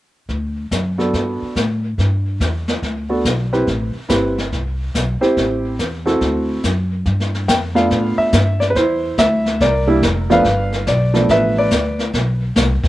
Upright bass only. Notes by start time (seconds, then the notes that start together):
0.29 D2
0.71 F#2
1.14 G2
1.42 muted upright bass stroke
1.56 A2
1.98 G2
2.40 E2
2.82 D2
3.24 B1
3.67 A1
3.95 muted upright bass stroke
4.10 G1
4.52 C2
4.94 B1
5.37 A1
5.79 E2
6.21 D2
6.64 F#2
7.06 G2
7.48 F2
7.91 A2
8.18 muted upright bass stroke
8.33 G2
8.75 E2
9.18 D2
9.61 C2
10.02 F1
10.45 G1
10.87 B1
11.29 A1
11.72 D2
12.13 B1
12.56 C2
12.83 muted upright bass stroke